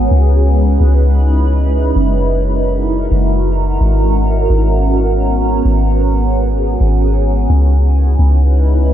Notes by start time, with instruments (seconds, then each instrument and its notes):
Already playing: ambient pad G#3 C#4
0.11 808-style bass C#2, ambient pad D#4 E4 B4
0.80 808-style bass C#2
1.96 808-style bass F#1, ambient pad F#4 A#4
3.11 808-style bass F#1
3.80 808-style bass G#1, ambient pad B3 C#4
4.50 808-style bass G#1
5.65 808-style bass G#1, ambient pad G#4
6.80 808-style bass G#1
7.49 808-style bass C#2, ambient pad G#3 C#4 D#4 E4 B4
8.19 808-style bass C#2